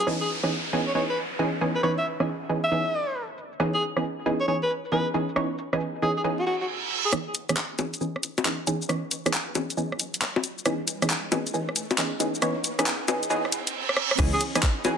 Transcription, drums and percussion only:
0.07 cross-stick medium
0.07 shaker soft
0.29 shaker medium
0.43 cross-stick medium
1.17 shaker medium
1.32 shaker soft
1.61 shaker medium
1.83 cross-stick medium
2.05 shaker medium
2.20 cross-stick medium
2.20 shaker soft
2.27 shaker soft
2.50 shaker medium
2.94 shaker medium
3.08 shaker soft
3.16 shaker soft
3.38 shaker medium
3.52 shaker soft
3.60 cross-stick medium
3.82 shaker medium
3.97 cross-stick medium
3.97 shaker soft
4.04 shaker soft
4.26 shaker medium
4.41 shaker soft
4.70 shaker medium
4.85 shaker soft
5.14 shaker medium
5.29 shaker soft
5.36 cross-stick medium
5.36 shaker soft
5.58 shaker medium
5.73 cross-stick medium
5.73 shaker soft
5.80 shaker soft
6.02 shaker medium
6.17 shaker soft
6.24 shaker soft
6.46 shaker medium
6.61 shaker soft
6.68 shaker soft
6.90 shaker medium
7.05 shaker soft
7.13 cross-stick medium
7.13 closed hi-hat medium
7.13 shaker soft
7.35 closed hi-hat loud
7.35 shaker medium
7.49 cross-stick medium
7.49 closed hi-hat medium
7.49 shaker soft
7.57 clap loud
7.57 closed hi-hat medium
7.57 shaker soft
7.79 closed hi-hat medium
7.79 high bongo medium
7.79 shaker medium
7.94 closed hi-hat soft
7.94 shaker soft
8.01 shaker soft
8.16 cross-stick soft
8.23 closed hi-hat loud
8.23 shaker medium
8.38 closed hi-hat medium
8.38 high bongo medium
8.38 shaker soft
8.45 clap loud
8.45 closed hi-hat medium
8.45 shaker soft
8.67 closed hi-hat medium
8.67 shaker medium
8.82 shaker soft
8.89 cross-stick medium
8.89 closed hi-hat medium
8.89 shaker soft
9.11 closed hi-hat loud
9.11 shaker medium
9.26 cross-stick medium
9.26 closed hi-hat medium
9.26 shaker soft
9.33 clap loud
9.33 closed hi-hat medium
9.55 closed hi-hat medium
9.55 high bongo medium
9.55 shaker medium
9.70 closed hi-hat soft
9.70 shaker soft
9.77 shaker soft
9.92 cross-stick soft
10.00 closed hi-hat loud
10.00 shaker medium
10.14 closed hi-hat medium
10.14 shaker soft
10.22 clap loud
10.22 closed hi-hat medium
10.36 high bongo medium
10.44 closed hi-hat medium
10.44 shaker medium
10.58 shaker soft
10.66 cross-stick medium
10.66 closed hi-hat medium
10.66 shaker soft
10.88 closed hi-hat loud
10.88 shaker medium
11.02 cross-stick medium
11.02 closed hi-hat medium
11.02 shaker soft
11.10 clap loud
11.10 closed hi-hat medium
11.32 closed hi-hat medium
11.32 high bongo medium
11.32 shaker medium
11.47 closed hi-hat soft
11.47 shaker soft
11.54 shaker soft
11.69 cross-stick soft
11.76 closed hi-hat loud
11.76 shaker medium
11.91 closed hi-hat medium
11.91 high bongo medium
11.91 shaker soft
11.98 clap loud
11.98 closed hi-hat medium
12.20 closed hi-hat medium
12.20 shaker medium
12.35 shaker soft
12.42 cross-stick medium
12.42 closed hi-hat medium
12.42 shaker soft
12.64 closed hi-hat loud
12.64 shaker medium
12.79 cross-stick medium
12.79 closed hi-hat medium
12.79 shaker soft
12.86 clap loud
12.86 closed hi-hat medium
13.08 closed hi-hat medium
13.08 high bongo medium
13.08 shaker medium
13.23 closed hi-hat soft
13.23 shaker soft
13.30 shaker soft
13.45 cross-stick soft
13.52 closed hi-hat loud
13.52 shaker medium
13.67 closed hi-hat medium
13.67 shaker soft
13.89 cross-stick medium
13.97 cross-stick medium
14.11 cross-stick medium
14.19 kick loud
14.19 cross-stick medium
14.19 closed hi-hat medium
14.19 crash loud
14.19 shaker soft
14.41 closed hi-hat loud
14.41 shaker medium
14.55 cross-stick medium
14.55 closed hi-hat medium
14.55 shaker soft
14.63 kick loud
14.63 clap loud
14.63 closed hi-hat medium
14.85 closed hi-hat medium
14.85 high bongo medium
14.85 shaker medium

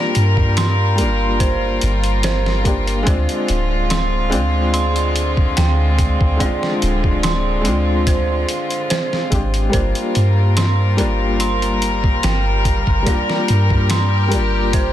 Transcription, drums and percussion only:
0.15 closed hi-hat medium
0.37 kick loud
0.57 snare loud
0.57 closed hi-hat medium
0.98 closed hi-hat medium
1.40 kick loud
1.40 closed hi-hat medium
1.81 closed hi-hat medium
2.04 closed hi-hat soft
2.23 snare loud
2.23 closed hi-hat medium
2.46 snare soft
2.65 kick medium
2.65 closed hi-hat medium
2.87 closed hi-hat soft
3.07 kick loud
3.07 closed hi-hat medium
3.29 closed hi-hat soft
3.48 closed hi-hat medium
3.90 snare loud
3.90 closed hi-hat medium
4.32 closed hi-hat medium
4.74 closed hi-hat medium
4.96 closed hi-hat soft
5.16 closed hi-hat medium
5.37 kick loud
5.57 snare loud
5.57 closed hi-hat medium
5.99 kick loud
5.99 closed hi-hat medium
6.21 kick loud
6.40 kick loud
6.40 closed hi-hat medium
6.63 snare soft
6.82 closed hi-hat medium
7.04 kick loud
7.23 snare loud
7.23 closed hi-hat medium
7.65 closed hi-hat medium
8.07 kick loud
8.07 closed hi-hat medium
8.49 closed hi-hat medium
8.71 closed hi-hat soft
8.90 snare loud
8.90 closed hi-hat medium
9.13 snare soft
9.32 kick loud
9.32 closed hi-hat medium
9.54 closed hi-hat soft
9.73 kick loud
9.73 closed hi-hat medium
9.95 closed hi-hat soft
10.15 closed hi-hat medium
10.57 snare loud
10.57 closed hi-hat loud
10.98 closed hi-hat medium
11.40 closed hi-hat medium
11.62 closed hi-hat soft
11.82 closed hi-hat medium
12.04 kick medium
12.23 snare loud
12.23 closed hi-hat medium
12.65 kick loud
12.65 closed hi-hat medium
12.87 kick medium
13.07 kick loud
13.07 closed hi-hat medium
13.30 snare soft
13.48 closed hi-hat medium
13.70 kick loud
13.90 snare loud
13.90 closed hi-hat loud
14.32 closed hi-hat medium
14.73 kick loud
14.73 closed hi-hat medium

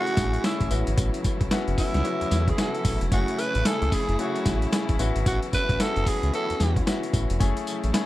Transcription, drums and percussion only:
0.07 closed hi-hat soft
0.17 kick medium
0.17 snare medium
0.17 closed hi-hat medium
0.17 tambourine medium
0.34 closed hi-hat soft
0.44 snare loud
0.44 closed hi-hat medium
0.44 tambourine loud
0.61 kick medium
0.61 closed hi-hat medium
0.71 closed hi-hat medium
0.71 tambourine medium
0.87 closed hi-hat medium
0.98 kick loud
0.98 closed hi-hat medium
0.98 tambourine medium
1.14 closed hi-hat medium
1.24 kick medium
1.24 closed hi-hat medium
1.24 tambourine medium
1.41 kick loud
1.41 closed hi-hat medium
1.51 snare loud
1.51 closed hi-hat medium
1.51 tambourine medium
1.68 closed hi-hat soft
1.78 kick medium
1.78 open hi-hat medium
1.78 tambourine medium
1.94 snare medium
1.94 closed hi-hat soft
2.05 closed hi-hat medium
2.21 closed hi-hat soft
2.31 snare medium
2.31 closed hi-hat medium
2.31 tambourine medium
2.48 kick medium
2.48 closed hi-hat soft
2.58 snare loud
2.58 closed hi-hat medium
2.58 tambourine medium
2.75 closed hi-hat medium
2.85 kick loud
2.85 open hi-hat medium
2.85 tambourine medium
3.01 closed hi-hat medium
3.12 kick loud
3.12 closed hi-hat medium
3.12 tambourine medium
3.28 closed hi-hat medium
3.39 closed hi-hat medium
3.39 tambourine medium
3.55 closed hi-hat medium
3.65 snare loud
3.65 closed hi-hat medium
3.65 tambourine loud
3.82 closed hi-hat soft
3.92 kick medium
3.92 open hi-hat medium
3.92 tambourine medium
4.09 closed hi-hat soft
4.19 closed hi-hat medium
4.36 closed hi-hat medium
4.46 kick medium
4.46 snare medium
4.46 closed hi-hat medium
4.46 tambourine medium
4.62 closed hi-hat soft
4.73 snare loud
4.73 closed hi-hat medium
4.73 tambourine medium
4.89 kick medium
4.89 closed hi-hat medium
4.99 closed hi-hat medium
4.99 tambourine medium
5.16 closed hi-hat medium
5.26 kick loud
5.26 closed hi-hat medium
5.26 tambourine medium
5.43 closed hi-hat medium
5.53 kick medium
5.53 closed hi-hat medium
5.53 tambourine medium
5.69 kick medium
5.69 closed hi-hat medium
5.80 snare loud
5.80 closed hi-hat medium
5.80 tambourine loud
5.96 closed hi-hat soft
6.06 kick medium
6.06 open hi-hat medium
6.06 tambourine medium
6.23 closed hi-hat soft
6.34 closed hi-hat medium
6.50 closed hi-hat medium
6.60 snare medium
6.60 closed hi-hat medium
6.60 tambourine medium
6.76 kick medium
6.76 closed hi-hat soft
6.87 snare loud
6.87 closed hi-hat medium
6.87 tambourine loud
7.03 closed hi-hat medium
7.13 kick medium
7.13 closed hi-hat medium
7.13 tambourine medium
7.30 closed hi-hat medium
7.40 kick loud
7.40 closed hi-hat medium
7.40 tambourine medium
7.57 closed hi-hat medium
7.67 closed hi-hat medium
7.67 tambourine medium
7.84 closed hi-hat medium
7.94 snare loud
7.94 closed hi-hat medium
7.94 tambourine loud

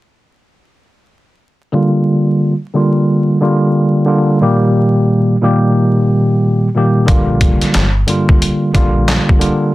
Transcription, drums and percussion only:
7.08 kick loud
7.08 closed hi-hat medium
7.41 kick loud
7.41 closed hi-hat medium
7.62 snare soft
7.62 closed hi-hat medium
7.74 snare loud
7.74 clap medium
7.74 closed hi-hat medium
8.08 closed hi-hat medium
8.29 kick loud
8.42 closed hi-hat loud
8.74 kick medium
8.74 closed hi-hat medium
9.08 snare loud
9.08 clap medium
9.08 closed hi-hat medium
9.29 kick medium
9.41 closed hi-hat medium

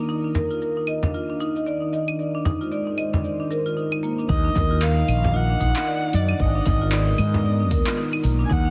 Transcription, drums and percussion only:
0.09 shaker soft
0.35 frame drum medium
0.35 shaker medium
0.51 shaker soft
0.62 shaker soft
0.87 claves soft
0.87 shaker medium
1.03 frame drum medium
1.03 shaker soft
1.14 shaker soft
1.40 shaker medium
1.56 shaker soft
1.67 shaker soft
1.93 shaker medium
2.08 claves medium
2.08 shaker soft
2.19 shaker soft
2.45 frame drum medium
2.45 shaker medium
2.61 shaker soft
2.72 shaker soft
2.98 claves soft
2.98 shaker medium
3.14 frame drum medium
3.14 shaker soft
3.24 shaker soft
3.51 shaker medium
3.67 shaker soft
3.77 shaker soft
3.92 claves medium
4.03 shaker medium
4.19 shaker soft
4.29 kick loud
4.29 shaker soft
4.56 kick loud
4.56 open hi-hat medium
4.56 frame drum medium
4.56 shaker medium
4.72 shaker soft
4.82 clap medium
4.82 shaker soft
5.08 open hi-hat medium
5.08 claves medium
5.08 shaker medium
5.24 frame drum loud
5.24 shaker soft
5.35 shaker soft
5.61 kick medium
5.61 open hi-hat medium
5.61 shaker medium
5.76 clap medium
5.76 shaker soft
5.87 shaker soft
6.13 open hi-hat medium
6.13 shaker medium
6.29 claves medium
6.29 shaker soft
6.40 kick loud
6.40 shaker soft
6.66 kick loud
6.66 open hi-hat medium
6.66 frame drum medium
6.66 shaker medium
6.82 shaker soft
6.92 clap medium
6.92 shaker soft
7.18 open hi-hat medium
7.18 claves medium
7.18 shaker medium
7.34 frame drum loud
7.34 shaker soft
7.45 shaker soft
7.71 kick loud
7.71 open hi-hat medium
7.71 shaker medium
7.87 clap medium
7.87 shaker soft
7.98 shaker soft
8.13 claves medium
8.24 open hi-hat medium
8.24 shaker medium
8.40 shaker soft
8.51 kick loud
8.51 shaker soft

